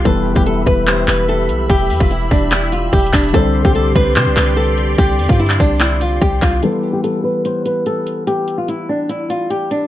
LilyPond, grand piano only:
\new Staff \with { instrumentName = "Grand piano" } { \time 4/4 \key e \minor \tempo 4 = 146 <e g b g' b'>1~ | <e g b g' b'>1 | <d g c' g' c''>1~ | <d g c' g' c''>1 |
<e g b g' b'>1~ | <e g b g' b'>1 | }